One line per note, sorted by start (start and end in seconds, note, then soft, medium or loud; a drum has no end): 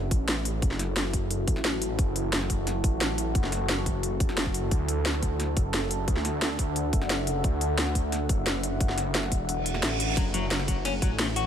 0.00 4.67 E4 medium
0.00 4.67 F#4 medium
0.00 10.13 A4 loud
0.11 0.61 A1 loud
0.11 kick loud
0.11 closed hi-hat medium
0.28 snare loud
0.28 closed hi-hat medium
0.45 closed hi-hat loud
0.62 1.46 F#1 loud
0.62 kick loud
0.62 closed hi-hat medium
0.71 snare soft
0.79 snare soft
0.79 closed hi-hat medium
0.96 snare loud
0.96 closed hi-hat medium
1.13 kick medium
1.13 closed hi-hat loud
1.31 closed hi-hat medium
1.48 1.97 A1 loud
1.48 kick loud
1.48 closed hi-hat medium
1.56 snare soft
1.65 snare loud
1.65 closed hi-hat medium
1.82 closed hi-hat loud
1.99 2.83 F#1 loud
1.99 kick loud
1.99 closed hi-hat medium
2.16 closed hi-hat medium
2.33 snare loud
2.33 closed hi-hat medium
2.41 snare soft
2.50 kick medium
2.50 closed hi-hat medium
2.67 snare soft
2.67 closed hi-hat medium
2.84 3.34 A1 loud
2.84 kick loud
2.84 closed hi-hat medium
3.01 snare loud
3.01 closed hi-hat medium
3.18 closed hi-hat medium
3.35 3.51 F#1 loud
3.35 kick loud
3.35 closed hi-hat medium
3.44 snare soft
3.52 3.68 F#1 loud
3.52 snare soft
3.52 closed hi-hat medium
3.69 4.19 F#1 medium
3.69 snare loud
3.69 closed hi-hat medium
3.86 kick medium
3.86 closed hi-hat medium
4.03 closed hi-hat medium
4.20 4.53 F#1 loud
4.20 kick loud
4.20 closed hi-hat medium
4.29 snare soft
4.37 snare loud
4.37 closed hi-hat medium
4.46 kick medium
4.54 4.70 F#1 loud
4.54 closed hi-hat medium
4.71 5.55 D2 loud
4.71 10.13 D4 medium
4.71 10.13 E5 medium
4.71 10.13 F#5 medium
4.71 kick loud
4.71 closed hi-hat medium
4.89 closed hi-hat medium
5.06 snare loud
5.06 closed hi-hat medium
5.14 snare soft
5.23 kick medium
5.23 closed hi-hat medium
5.40 snare soft
5.40 closed hi-hat medium
5.57 6.06 F#1 loud
5.57 kick loud
5.57 closed hi-hat medium
5.74 snare loud
5.74 closed hi-hat medium
5.91 closed hi-hat loud
6.08 6.92 D2 loud
6.08 kick loud
6.08 closed hi-hat medium
6.16 snare soft
6.25 snare soft
6.25 closed hi-hat medium
6.42 snare loud
6.42 closed hi-hat medium
6.59 kick medium
6.59 closed hi-hat medium
6.76 closed hi-hat medium
6.93 7.43 F#1 loud
6.93 kick loud
6.93 closed hi-hat medium
7.02 snare soft
7.10 snare loud
7.10 closed hi-hat medium
7.27 closed hi-hat medium
7.44 8.28 D2 loud
7.44 kick loud
7.44 closed hi-hat medium
7.61 closed hi-hat loud
7.78 snare loud
7.78 closed hi-hat medium
7.87 snare soft
7.95 kick medium
7.95 closed hi-hat loud
8.12 snare soft
8.12 closed hi-hat medium
8.29 8.79 F#1 loud
8.29 kick loud
8.29 closed hi-hat loud
8.46 snare loud
8.46 closed hi-hat medium
8.63 closed hi-hat loud
8.81 9.30 F#1 loud
8.81 kick loud
8.81 closed hi-hat medium
8.89 snare soft
8.98 snare soft
8.98 closed hi-hat loud
9.15 snare loud
9.15 closed hi-hat medium
9.23 snare soft
9.32 9.81 E1 loud
9.32 kick medium
9.32 closed hi-hat loud
9.49 closed hi-hat medium
9.49 reverse cymbal medium
9.66 closed hi-hat loud
9.74 snare soft
9.83 10.16 A1 medium
9.83 snare loud
9.83 closed hi-hat medium
10.00 closed hi-hat loud
10.17 11.01 F#1 loud
10.17 10.25 F#3 medium
10.17 11.47 E4 medium
10.17 11.47 F#4 medium
10.17 11.47 A4 loud
10.17 kick loud
10.17 closed hi-hat medium
10.17 ride medium
10.34 10.46 F#3 loud
10.34 closed hi-hat loud
10.51 10.59 F#3 medium
10.51 snare loud
10.51 closed hi-hat medium
10.51 ride medium
10.60 snare soft
10.68 10.76 F#3 medium
10.68 kick medium
10.68 closed hi-hat loud
10.85 10.93 C#4 medium
10.85 snare soft
10.85 closed hi-hat medium
10.85 ride medium
11.02 11.47 A1 loud
11.02 11.10 F#3 loud
11.02 kick loud
11.02 closed hi-hat loud
11.19 11.27 A3 medium
11.19 snare loud
11.19 closed hi-hat medium
11.19 ride medium
11.36 11.47 F#4 medium
11.36 closed hi-hat loud